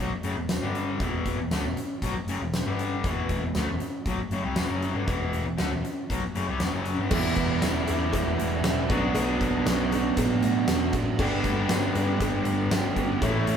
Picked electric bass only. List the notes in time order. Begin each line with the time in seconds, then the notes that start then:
0.00 B1
0.11 muted picked electric bass stroke
0.23 F#1
0.37 E1
0.62 G1
1.00 E1
1.38 E1
1.52 D2
1.63 E1
2.02 B1
2.15 muted picked electric bass stroke
2.27 F#1
2.40 E1
2.65 G1
3.04 E1
3.41 E1
3.55 D2
3.67 E1
3.81 muted picked electric bass stroke
4.06 B1
4.18 muted picked electric bass stroke
4.31 F#1
4.44 C2
4.57 E1
4.70 F#1
4.95 G1
5.08 E1
5.46 E1
5.59 D2
5.72 E1
5.85 muted picked electric bass stroke
6.10 B1
6.23 muted picked electric bass stroke
6.36 F#1
6.49 C2
6.61 E1
6.73 F#1
6.99 G1
7.11 E1
7.36 E1
7.62 E1
7.89 E2
8.13 E1
8.40 E1
8.64 E1
8.89 B1
9.14 B1
9.40 B1
9.65 B1
10.17 A1
10.43 A2
10.69 E2
10.94 A1
11.19 G1
11.44 G1
11.70 G1
11.95 G2
12.20 G1
12.46 G1
12.71 G1
12.97 G1
13.22 A1
13.48 A1